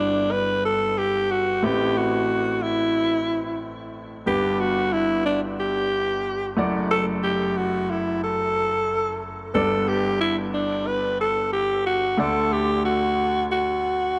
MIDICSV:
0, 0, Header, 1, 3, 480
1, 0, Start_track
1, 0, Key_signature, 1, "major"
1, 0, Tempo, 659341
1, 1188, Time_signature, 4, 2, 24, 8
1, 10331, End_track
2, 0, Start_track
2, 0, Title_t, "Alto saxophone"
2, 0, Program_c, 0, 65
2, 0, Note_on_c, 0, 62, 86
2, 230, Note_on_c, 0, 71, 101
2, 241, Note_off_c, 0, 62, 0
2, 469, Note_off_c, 0, 71, 0
2, 473, Note_on_c, 0, 69, 87
2, 712, Note_on_c, 0, 67, 90
2, 723, Note_off_c, 0, 69, 0
2, 953, Note_on_c, 0, 66, 89
2, 964, Note_off_c, 0, 67, 0
2, 1195, Note_on_c, 0, 67, 89
2, 1206, Note_off_c, 0, 66, 0
2, 1436, Note_on_c, 0, 66, 88
2, 1447, Note_off_c, 0, 67, 0
2, 1910, Note_on_c, 0, 64, 73
2, 1921, Note_off_c, 0, 66, 0
2, 2629, Note_off_c, 0, 64, 0
2, 3108, Note_on_c, 0, 67, 93
2, 3348, Note_on_c, 0, 66, 90
2, 3359, Note_off_c, 0, 67, 0
2, 3588, Note_on_c, 0, 64, 87
2, 3599, Note_off_c, 0, 66, 0
2, 3823, Note_off_c, 0, 64, 0
2, 3827, Note_on_c, 0, 62, 74
2, 3935, Note_off_c, 0, 62, 0
2, 4074, Note_on_c, 0, 67, 85
2, 4762, Note_off_c, 0, 67, 0
2, 5028, Note_on_c, 0, 69, 98
2, 5136, Note_off_c, 0, 69, 0
2, 5267, Note_on_c, 0, 67, 88
2, 5511, Note_on_c, 0, 66, 86
2, 5522, Note_off_c, 0, 67, 0
2, 5754, Note_on_c, 0, 64, 75
2, 5765, Note_off_c, 0, 66, 0
2, 5991, Note_off_c, 0, 64, 0
2, 5994, Note_on_c, 0, 69, 90
2, 6682, Note_off_c, 0, 69, 0
2, 6950, Note_on_c, 0, 69, 98
2, 7194, Note_on_c, 0, 67, 90
2, 7205, Note_off_c, 0, 69, 0
2, 7426, Note_off_c, 0, 67, 0
2, 7430, Note_on_c, 0, 64, 88
2, 7538, Note_off_c, 0, 64, 0
2, 7670, Note_on_c, 0, 62, 86
2, 7910, Note_on_c, 0, 71, 100
2, 7921, Note_off_c, 0, 62, 0
2, 8149, Note_off_c, 0, 71, 0
2, 8157, Note_on_c, 0, 69, 93
2, 8376, Note_off_c, 0, 69, 0
2, 8392, Note_on_c, 0, 67, 91
2, 8613, Note_off_c, 0, 67, 0
2, 8634, Note_on_c, 0, 66, 89
2, 8874, Note_on_c, 0, 69, 95
2, 8885, Note_off_c, 0, 66, 0
2, 9116, Note_on_c, 0, 67, 86
2, 9127, Note_off_c, 0, 69, 0
2, 9349, Note_off_c, 0, 67, 0
2, 9353, Note_on_c, 0, 66, 85
2, 9802, Note_off_c, 0, 66, 0
2, 9837, Note_on_c, 0, 66, 84
2, 10331, Note_off_c, 0, 66, 0
2, 10331, End_track
3, 0, Start_track
3, 0, Title_t, "Grand piano"
3, 0, Program_c, 1, 0
3, 0, Control_c, 1, 64, 127
3, 0, Note_on_c, 1, 31, 56
3, 0, Note_on_c, 1, 43, 59
3, 0, Note_on_c, 1, 55, 57
3, 0, Note_on_c, 1, 59, 54
3, 0, Note_on_c, 1, 62, 54
3, 0, Note_on_c, 1, 71, 66
3, 1155, Note_off_c, 1, 55, 0
3, 1158, Note_off_c, 1, 59, 0
3, 1160, Note_off_c, 1, 31, 0
3, 1160, Note_off_c, 1, 43, 0
3, 1162, Note_off_c, 1, 62, 0
3, 1164, Note_off_c, 1, 71, 0
3, 1184, Note_on_c, 1, 57, 59
3, 1189, Note_on_c, 1, 33, 59
3, 1189, Note_on_c, 1, 60, 52
3, 1192, Note_on_c, 1, 45, 55
3, 1194, Note_on_c, 1, 64, 52
3, 1196, Control_c, 1, 64, 0
3, 1200, Note_on_c, 1, 71, 64
3, 1341, Control_c, 1, 64, 127
3, 3077, Note_off_c, 1, 57, 0
3, 3080, Note_off_c, 1, 33, 0
3, 3080, Note_off_c, 1, 60, 0
3, 3081, Note_off_c, 1, 45, 0
3, 3082, Note_off_c, 1, 64, 0
3, 3085, Note_off_c, 1, 71, 0
3, 3103, Note_on_c, 1, 55, 57
3, 3107, Note_on_c, 1, 59, 56
3, 3111, Note_on_c, 1, 31, 55
3, 3112, Note_on_c, 1, 43, 55
3, 3114, Note_on_c, 1, 62, 54
3, 3119, Control_c, 1, 64, 0
3, 3119, Note_on_c, 1, 71, 65
3, 3266, Control_c, 1, 64, 127
3, 4756, Note_off_c, 1, 55, 0
3, 4759, Note_off_c, 1, 59, 0
3, 4760, Note_off_c, 1, 31, 0
3, 4761, Note_off_c, 1, 43, 0
3, 4762, Note_off_c, 1, 62, 0
3, 4765, Note_off_c, 1, 71, 0
3, 4780, Note_on_c, 1, 57, 70
3, 4786, Note_on_c, 1, 64, 64
3, 4788, Note_on_c, 1, 30, 69
3, 4788, Note_on_c, 1, 42, 68
3, 4790, Note_on_c, 1, 78, 63
3, 4796, Control_c, 1, 64, 0
3, 4796, Note_on_c, 1, 74, 81
3, 4916, Control_c, 1, 64, 127
3, 6675, Note_off_c, 1, 57, 0
3, 6678, Note_off_c, 1, 64, 0
3, 6679, Note_off_c, 1, 30, 0
3, 6679, Note_off_c, 1, 42, 0
3, 6680, Note_off_c, 1, 78, 0
3, 6683, Note_off_c, 1, 74, 0
3, 6945, Note_on_c, 1, 59, 59
3, 6950, Note_on_c, 1, 62, 54
3, 6952, Note_on_c, 1, 31, 58
3, 6953, Note_on_c, 1, 43, 59
3, 6956, Note_on_c, 1, 55, 55
3, 6959, Control_c, 1, 64, 0
3, 6961, Note_on_c, 1, 74, 66
3, 7080, Control_c, 1, 64, 127
3, 8837, Note_off_c, 1, 59, 0
3, 8840, Note_off_c, 1, 62, 0
3, 8841, Note_off_c, 1, 31, 0
3, 8842, Note_off_c, 1, 43, 0
3, 8843, Note_off_c, 1, 55, 0
3, 8846, Note_off_c, 1, 74, 0
3, 8862, Note_on_c, 1, 57, 62
3, 8868, Note_on_c, 1, 62, 53
3, 8870, Note_on_c, 1, 38, 59
3, 8871, Note_on_c, 1, 50, 55
3, 8873, Note_on_c, 1, 78, 57
3, 8877, Control_c, 1, 64, 0
3, 8879, Note_on_c, 1, 74, 66
3, 8993, Control_c, 1, 64, 127
3, 10331, Note_off_c, 1, 38, 0
3, 10331, Note_off_c, 1, 50, 0
3, 10331, Note_off_c, 1, 57, 0
3, 10331, Note_off_c, 1, 62, 0
3, 10331, Note_off_c, 1, 74, 0
3, 10331, Note_off_c, 1, 78, 0
3, 10331, End_track
0, 0, End_of_file